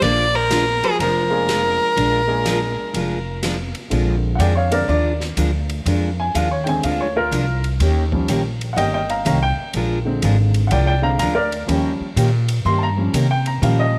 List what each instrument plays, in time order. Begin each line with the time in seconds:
0.02 upright bass A#1, steel-string acoustic guitar F3 G#3 D4 F4 A#4, hollow-body jazz guitar A#3, fiddle D5, ride
0.34 hollow-body jazz guitar F3, fiddle A#4
0.51 steel-string acoustic guitar F3 G#3 D4 F4 A#4, snare, hi-hat pedal, ride
0.83 hollow-body jazz guitar F3, fiddle G#4, ride
0.99 upright bass F1, steel-string acoustic guitar F3 G#3 D4 F4 A#4, hollow-body jazz guitar F3, fiddle A#4, ride
1.30 upright piano G#3 A#3 D4 F4 G#4
1.48 steel-string acoustic guitar F3 G#3 D4 F4 A#4, snare, hi-hat pedal, ride
1.97 upright bass A#1, steel-string acoustic guitar F3 G#3 D4 F4 A#4, ride
2.27 upright piano G#3 A#3 D4 F4 G#4
2.46 steel-string acoustic guitar F3 G#3 D4 F4 A#4, snare, hi-hat pedal, ride
2.94 upright bass F1, steel-string acoustic guitar F3 G#3 D4 F4 A#4, ride
3.43 steel-string acoustic guitar F3 G#3 D4 F4 A#4, snare, hi-hat pedal, ride
3.75 ride
3.90 upright bass A#1, upright piano D3 G#3 C4, steel-string acoustic guitar F3 G#3 D4 F4 A#4, ride
4.35 upright bass F2, upright piano D5 F#5
4.40 steel-string acoustic guitar F3 G#3 D4 F4 A#4, upright piano G5, hi-hat pedal, ride
4.55 upright piano C#5 F5
4.71 upright piano D3 G#3 C4 A#4 D5, ride
4.88 upright bass D#2, steel-string acoustic guitar F3 G#3 D4 F4 A#4, upright piano D5
5.20 snare
5.37 upright bass D2, steel-string acoustic guitar F3 G#3 D4 F4 A#4, hi-hat pedal, ride
5.69 ride
5.86 upright bass F2, steel-string acoustic guitar F3 G#3 D4 F4 A#4, ride
6.20 upright piano G#5
6.35 upright bass D#2, steel-string acoustic guitar F3 G#3 D4 F4 A#4, upright piano F5, hi-hat pedal, ride
6.51 upright piano C#5
6.64 upright piano D3 G#3 C4 G5, ride
6.68 upright piano G#5
6.83 upright bass D2, steel-string acoustic guitar F3 G#3 D4 F4 A#4, upright piano F5, ride
7.01 upright piano C#5
7.16 upright piano F4 A#4
7.31 upright bass C2, steel-string acoustic guitar F3 G#3 D4 F4 A#4, hi-hat pedal, ride
7.64 ride
7.80 upright bass D#2, steel-string acoustic guitar D#3 A#3 C#4 G4 A#4, ride
8.12 upright piano F3 G3 C#4, kick
8.28 upright bass A#1, steel-string acoustic guitar D#3 A#3 C#4 G4 A#4, hi-hat pedal, ride
8.61 ride
8.73 upright bass G1, steel-string acoustic guitar D#3, upright piano D#5 F#5
8.77 steel-string acoustic guitar A#3 C#4 G4 A#4, upright piano G5, ride
8.94 upright piano D#5 G5
9.09 upright piano F5 A#5, ride
9.25 upright bass C2, steel-string acoustic guitar D#3 A#3 C#4 G4 A#4, upright piano F5 A#5, hi-hat pedal, ride
9.43 upright piano G5
9.57 muted upright bass stroke
9.73 upright bass A#1, steel-string acoustic guitar F3 G#3 D4 F4 A#4, ride
10.05 upright piano D3 G#3 C4
10.22 upright bass G#1, steel-string acoustic guitar F3 G#3 D4 F4 A#4, hi-hat pedal, ride
10.54 ride
10.67 steel-string acoustic guitar F3, upright piano F#5, ride
10.71 upright bass C2, steel-string acoustic guitar G#3 D4 F4 A#4, upright piano D5 G5
10.86 upright piano D5 G5
11.02 upright piano D3 G#3 C4 F5 A#5
11.19 upright bass D2, steel-string acoustic guitar F3 G#3 D4 F4 A#4, upright piano F5 A#5, hi-hat pedal, ride
11.35 upright piano A#4 D5
11.52 ride
11.67 upright bass D#2, steel-string acoustic guitar D#3 A#3 C#4 G4 A#4, upright piano F3 G3 C#4, ride
12.00 muted upright bass stroke
12.16 upright bass A#2, steel-string acoustic guitar D#3 A#3 C#4 G4 A#4, hi-hat pedal, ride
12.48 ride
12.65 upright bass G2, steel-string acoustic guitar D#3 A#3 C#4 G4 A#4, upright piano C6
12.78 upright piano A5
12.83 upright piano A#5
12.97 upright piano F3 G3 C#4
13.13 upright bass C3, steel-string acoustic guitar D#3 A#3 C#4 G4 A#4, hi-hat pedal, ride
13.31 upright piano G5
13.46 upright piano A#5, ride
13.62 upright bass A#2, steel-string acoustic guitar D#3 A#3 C#4 G4 A#4, upright piano F3 G3 C#4 F5, ride
13.79 upright piano D#5